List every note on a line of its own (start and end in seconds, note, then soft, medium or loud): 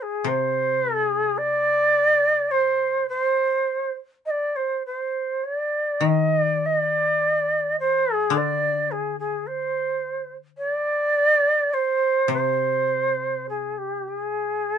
0.02 0.29 G#4 medium
0.24 3.62 C3 soft
0.24 1.01 C5 medium
1.01 1.39 G#4 medium
1.38 2.52 D5 loud
2.51 3.07 C5 medium
3.09 3.92 C5 medium
4.26 4.31 D#5 medium
4.30 4.57 D5 medium
4.56 4.83 C5 medium
4.86 5.46 C5 medium
5.44 5.55 C#5 medium
5.55 6.07 D5 medium
6.01 9.39 D#3 soft
6.06 6.40 D#5 medium
6.40 6.66 D5 medium
6.66 7.79 D5 medium
7.80 8.15 C5 medium
8.15 8.39 G#4 medium
8.30 11.68 D3 soft
8.37 8.93 D5 medium
8.91 9.19 G#4 medium
9.19 9.48 G#4 medium
9.47 10.33 C5 medium
10.58 10.69 C#5 medium
10.69 11.75 D5 medium
11.73 12.32 C5 medium
12.28 14.78 C3 soft
12.33 13.47 C5 medium
13.49 13.79 G#4 medium
13.78 14.08 G4 medium
14.08 14.19 G4 medium
14.19 14.78 G#4 medium